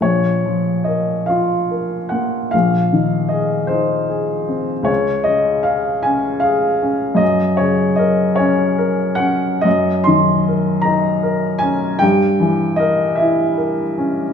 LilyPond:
\new Staff \with { instrumentName = "Upright piano" } { \time 6/8 \key bes \minor \tempo 4. = 51 << { des''4 ees''8 f''4 ges''8 | f''4 ees''8 c''4. | des''8 ees''8 f''8 aes''8 f''4 | ees''8 des''8 ees''8 des''4 ges''8 |
\key ees \dorian ees''8 c'''4 bes''4 aes''8 | g''4 ees''8 e''4 r8 | } \\ { bes,,8 f8 bes'8 f'8 bes'8 bes8 | bes,,8 ees8 aes'8 ees'8 aes'8 c'8 | des,8 des8 aes'8 des'8 aes'8 des'8 | ges,8 des8 bes'8 des'8 bes'8 des'8 |
ges,8 ees8 bes'8 ees'8 bes'8 des'8 | g,8 e8 bes'8 e'8 bes'8 des'8 | } >> }